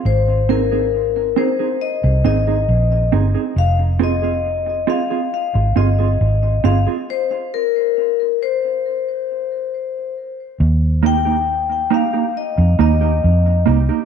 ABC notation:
X:1
M:4/4
L:1/16
Q:1/4=68
K:Ebmix
V:1 name="Vibraphone"
c2 B4 c2 e2 e4 z2 | f2 e4 f2 f2 e4 f2 | c2 B4 c8 z2 | z2 g4 f2 e2 e4 z2 |]
V:2 name="Clean electric guitar"
z2 [CEA] [CEA] z2 [CEA] [CEA] z2 [CEA] [CEA] z2 [CEA] [CEA] | z2 [CFA] [CFA] z2 [CFA] [CFA] z2 [CFA] [CFA] z2 [CFA] [CFA] | z16 | z2 [B,EG] [B,EG] z2 [B,EG] [B,EG] z2 [B,EG] [B,EG] z2 [B,EG] [B,EG] |]
V:3 name="Fingered electric bass" clef=bass
A,,,6 z3 C,, A,,,2 B,,,2 G,,, z | F,,,6 z3 A,,, G,,,2 A,,,2 G,,, z | z16 | E,,6 z3 F,, E,,2 F,,2 C,, z |]